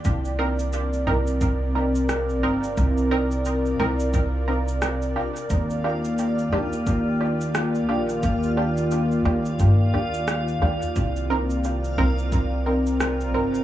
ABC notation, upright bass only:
X:1
M:4/4
L:1/8
Q:"Swing 16ths" 1/4=88
K:Cm
V:1 name="Upright bass" clef=bass
C,,3 C,,4 G,,, | C,,3 C,,4 z | E,,3 E,,4 B,,, | E,,3 E,, G,, E,,2 E,, |
C,,3 C,,4 G,,, |]